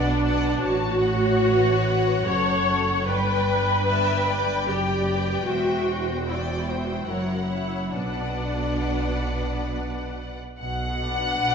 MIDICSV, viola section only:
0, 0, Header, 1, 2, 480
1, 0, Start_track
1, 0, Key_signature, 2, "minor"
1, 0, Tempo, 775194
1, 390, Time_signature, 3, 2, 24, 8
1, 874, Tempo, 857143
1, 1354, Tempo, 803213
1, 4234, Tempo, 884956
1, 5674, Tempo, 834492
1, 6712, End_track
2, 0, Start_track
2, 0, Title_t, "Viola section"
2, 0, Program_c, 0, 48
2, 0, Note_on_c, 0, 62, 82
2, 380, Note_off_c, 0, 62, 0
2, 390, Note_on_c, 0, 66, 90
2, 1354, Note_off_c, 0, 66, 0
2, 1354, Note_on_c, 0, 73, 79
2, 1837, Note_off_c, 0, 73, 0
2, 1837, Note_on_c, 0, 71, 84
2, 2782, Note_off_c, 0, 71, 0
2, 2802, Note_on_c, 0, 67, 65
2, 3261, Note_on_c, 0, 66, 74
2, 3273, Note_off_c, 0, 67, 0
2, 3744, Note_off_c, 0, 66, 0
2, 3755, Note_on_c, 0, 64, 40
2, 3791, Note_on_c, 0, 66, 35
2, 3800, Note_off_c, 0, 64, 0
2, 3840, Note_on_c, 0, 64, 36
2, 3842, Note_off_c, 0, 66, 0
2, 3888, Note_on_c, 0, 66, 38
2, 3890, Note_off_c, 0, 64, 0
2, 3938, Note_off_c, 0, 66, 0
2, 3941, Note_on_c, 0, 64, 38
2, 3989, Note_off_c, 0, 64, 0
2, 3993, Note_on_c, 0, 66, 37
2, 4039, Note_off_c, 0, 66, 0
2, 4045, Note_on_c, 0, 64, 36
2, 4089, Note_off_c, 0, 64, 0
2, 4096, Note_on_c, 0, 66, 42
2, 4139, Note_off_c, 0, 66, 0
2, 4141, Note_on_c, 0, 64, 40
2, 4186, Note_off_c, 0, 64, 0
2, 4193, Note_on_c, 0, 66, 41
2, 4237, Note_off_c, 0, 66, 0
2, 4237, Note_on_c, 0, 64, 42
2, 4280, Note_off_c, 0, 64, 0
2, 4289, Note_on_c, 0, 66, 42
2, 4326, Note_on_c, 0, 64, 42
2, 4328, Note_off_c, 0, 66, 0
2, 4370, Note_off_c, 0, 64, 0
2, 4370, Note_on_c, 0, 66, 38
2, 4415, Note_off_c, 0, 66, 0
2, 4415, Note_on_c, 0, 64, 46
2, 4699, Note_on_c, 0, 62, 56
2, 4706, Note_off_c, 0, 64, 0
2, 5900, Note_off_c, 0, 62, 0
2, 6401, Note_on_c, 0, 62, 42
2, 6402, Note_on_c, 0, 71, 42
2, 6712, Note_off_c, 0, 62, 0
2, 6712, Note_off_c, 0, 71, 0
2, 6712, End_track
0, 0, End_of_file